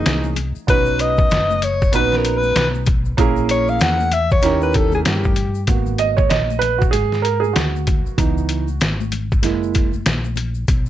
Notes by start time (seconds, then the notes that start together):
Already playing: E3 A#3 C#4 D#4 F#4 G#4
0.06 C2, snare, closed hi-hat, low conga, shaker
0.24 high conga, shaker
0.36 closed hi-hat, low conga, shaker
0.55 muted fingered electric bass stroke, shaker
0.67 B1 B3 C#4 D#4 F#4 B4, kick, closed hi-hat, shaker
0.86 shaker
0.99 D#5, closed hi-hat, shaker
1.17 kick, high conga, shaker
1.30 F#1, snare, closed hi-hat, shaker
1.51 high conga, shaker
1.62 C#5, closed hi-hat, low conga, shaker
1.82 kick, shaker
1.92 A#1 B3 C#4 D#4 F#4 B4, closed hi-hat, shaker
2.12 snare, shaker
2.17 A#4
2.24 closed hi-hat, shaker
2.37 B4
2.43 high conga, shaker
2.56 B1, snare, closed hi-hat, low conga, shaker
2.75 high conga, shaker
2.86 kick, closed hi-hat, low conga, shaker
3.05 shaker
3.17 A#1 A#3 C#4 E4 G#4 A#4, kick, closed hi-hat, shaker
3.36 shaker
3.49 C#5, closed hi-hat, shaker
3.68 F5, high conga, shaker
3.79 E2 F#5, snare, closed hi-hat, shaker
4.00 high conga, shaker
4.11 E5, closed hi-hat, low conga, shaker
4.31 C#5, kick, shaker
4.42 D#2 C#4 D#4 E4 G4 A#4, snare, closed hi-hat, high conga, shaker
4.61 B4, shaker
4.73 A4, kick, closed hi-hat, shaker
4.92 G#4, high conga, shaker
5.05 G2 G4, snare, closed hi-hat, low conga, shaker
5.24 kick, high conga, shaker
5.36 closed hi-hat, low conga, shaker
5.55 shaker
5.67 G#1 A#3 B3 F#4, kick, closed hi-hat, shaker
5.86 shaker
5.98 D#5, closed hi-hat, shaker
6.17 C#5, kick, high conga, shaker
6.29 A#1 D#5, snare, closed hi-hat, shaker
6.50 high conga, shaker
6.59 B4, closed hi-hat, low conga, shaker
6.78 F#4, kick, shaker
6.91 G#2 G#4, closed hi-hat, shaker
7.12 snare, shaker
7.22 A#4, closed hi-hat, shaker
7.40 G#4, high conga, shaker
7.53 D2 F#4, snare, closed hi-hat
7.57 low conga, shaker
7.76 high conga, shaker
7.87 kick, closed hi-hat, low conga, shaker
8.06 muted fingered electric bass stroke, shaker
8.18 C#2 E3 B3 D#4, kick, closed hi-hat, shaker
8.38 shaker
8.49 closed hi-hat, shaker
8.68 high conga, shaker
8.81 G#1, snare, closed hi-hat, shaker
9.01 high conga, shaker
9.12 closed hi-hat, low conga, shaker
9.32 kick, shaker
9.42 F#1 G#3 A#3 E4, snare, closed hi-hat, shaker
9.63 shaker
9.74 kick, closed hi-hat, shaker
9.93 high conga, shaker
10.06 A#1, snare, closed hi-hat, low conga, shaker
10.24 high conga, shaker
10.36 closed hi-hat, low conga, shaker
10.54 shaker
10.68 B1, kick, closed hi-hat, shaker
10.86 shaker